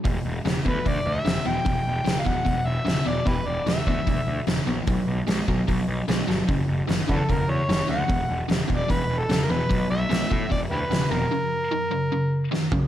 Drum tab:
HH |o-o-o-o-|o-o-o-o-|o-o-o-o-|o-o-o-o-|
SD |--o---o-|--o---o-|--o---o-|--o---oo|
FT |--------|--------|--------|--------|
BD |o--oo---|o--oo---|o--oo---|o--oo---|

HH |o-o-o-o-|o-o-o-o-|o-o-o-o-|--------|
SD |--o---o-|--o---o-|--o---o-|------o-|
FT |--------|--------|--------|-------o|
BD |o--oo---|o--oo---|o--oo---|--------|